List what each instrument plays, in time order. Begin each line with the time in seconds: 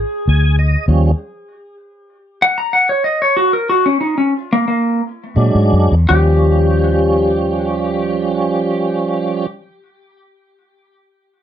Already playing: electric slide guitar G#4
0.28 fingered electric bass D2, tonewheel organ G#5
0.59 tonewheel organ D#5
0.88 fingered electric bass D#2, tonewheel organ F3 G3 C#4
2.42 electric slide guitar F#5
2.58 electric slide guitar A#5
2.73 electric slide guitar F#5
2.89 electric slide guitar C#5
3.04 electric slide guitar D#5
3.22 electric slide guitar C#5
3.37 electric slide guitar F#4
3.53 electric slide guitar A#4
3.69 electric slide guitar F#4
3.86 electric slide guitar C#4
4.01 electric slide guitar D#4
4.18 electric slide guitar C#4
4.53 electric slide guitar A#3
4.68 electric slide guitar A#3
5.36 fingered electric bass A#2, tonewheel organ F#3 G#3 D4
5.55 fingered electric bass G#2
5.73 fingered electric bass F#2
5.92 fingered electric bass E2
6.09 fingered electric bass D#2, tonewheel organ F3 G3 C#4, electric slide guitar G4